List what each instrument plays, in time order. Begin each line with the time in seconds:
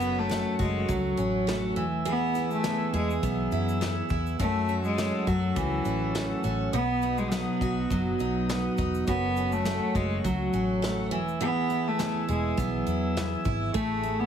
Already playing: fingered electric bass F#1, steel-string acoustic guitar F#2 F#4, cello B3, tonewheel organ A4 C#5 F#5 C#6
0.00 steel-string acoustic guitar C#4, shaker
0.19 cello A3
0.29 steel-string acoustic guitar A3, snare, shaker
0.59 fingered electric bass F#1, cello G#3, steel-string acoustic guitar F#4, kick, shaker
0.89 fingered electric bass C#2, steel-string acoustic guitar F#3, cello F#3, kick, shaker
1.17 fingered electric bass A1, steel-string acoustic guitar C#4, shaker
1.47 steel-string acoustic guitar A3, snare, shaker
1.76 fingered electric bass E1, steel-string acoustic guitar E3, tonewheel organ B4 E5 G#5 E6, shaker
2.05 steel-string acoustic guitar E3 G#4, cello B3, shaker
2.35 steel-string acoustic guitar E4, snare, shaker
2.51 cello A3, shaker
2.64 steel-string acoustic guitar B3, snare, shaker
2.93 fingered electric bass E2, cello G#3, steel-string acoustic guitar G#4, shaker
3.10 shaker
3.23 fingered electric bass B1, cello F#3, steel-string acoustic guitar B3, kick, shaker
3.52 fingered electric bass F#2, steel-string acoustic guitar E4, shaker
3.69 shaker
3.81 steel-string acoustic guitar B3, snare, shaker
4.09 fingered electric bass E2, steel-string acoustic guitar E4, kick, shaker
4.26 shaker
4.39 steel-string acoustic guitar F#2 F#4, fingered electric bass F#2, cello A3, tonewheel organ C#5 F#5 A5, kick, shaker
4.68 steel-string acoustic guitar C#4, shaker
4.84 cello G#3, shaker
4.98 steel-string acoustic guitar A3, snare, shaker
5.27 fingered electric bass F#2, cello F#3, steel-string acoustic guitar F#4, kick, shaker
5.56 fingered electric bass C#2, steel-string acoustic guitar E3, cello E3, kick, shaker
5.85 fingered electric bass A1, steel-string acoustic guitar C#4, shaker
6.15 steel-string acoustic guitar A3, snare, shaker
6.44 fingered electric bass A1, steel-string acoustic guitar C#4, shaker
6.73 fingered electric bass B1, steel-string acoustic guitar B2 F#4, cello B3, tonewheel organ B4 D#5 D#6, shaker
7.02 steel-string acoustic guitar D#4, shaker
7.18 cello G#3, shaker
7.31 cello F#3, steel-string acoustic guitar B3, snare, shaker
7.61 fingered electric bass B1, steel-string acoustic guitar F#4, kick, shaker
7.90 fingered electric bass F#1, cello F#3, steel-string acoustic guitar F#3, kick, shaker
8.19 fingered electric bass B1, steel-string acoustic guitar D#4, shaker
8.49 steel-string acoustic guitar B3, snare, shaker
8.78 fingered electric bass E1, steel-string acoustic guitar D#4, kick, shaker
8.95 shaker
9.06 fingered electric bass F#1, steel-string acoustic guitar F#2 F#4, cello B3, tonewheel organ A4 C#5 C#6, kick, shaker
9.36 steel-string acoustic guitar C#4, shaker
9.52 cello A3, shaker
9.65 steel-string acoustic guitar A3, snare, shaker
9.95 fingered electric bass F#1, cello G#3, steel-string acoustic guitar F#4, kick, shaker
10.24 fingered electric bass C#2, steel-string acoustic guitar F#3, cello F#3, kick, shaker
10.53 fingered electric bass A1, steel-string acoustic guitar C#4, shaker
10.82 steel-string acoustic guitar A3, snare, shaker
11.11 fingered electric bass E1, steel-string acoustic guitar E3, tonewheel organ B4 E5 G#5 E6, shaker
11.28 shaker
11.41 steel-string acoustic guitar E3 G#4, cello B3, shaker
11.70 steel-string acoustic guitar E4, shaker
11.88 cello A3
11.99 steel-string acoustic guitar B3, snare, shaker
12.29 fingered electric bass E1, cello G#3, steel-string acoustic guitar G#4, shaker
12.57 fingered electric bass B1, cello F#3, steel-string acoustic guitar B3, kick, shaker
12.87 fingered electric bass E2, steel-string acoustic guitar E4, shaker
13.17 steel-string acoustic guitar B3, snare, shaker
13.45 fingered electric bass G#1, steel-string acoustic guitar E4, kick, shaker
13.72 fingered electric bass A1, tonewheel organ A3 E5 C#6, steel-string acoustic guitar A3 G#4, cello A3, kick, shaker
14.03 steel-string acoustic guitar E4, shaker
14.20 cello B3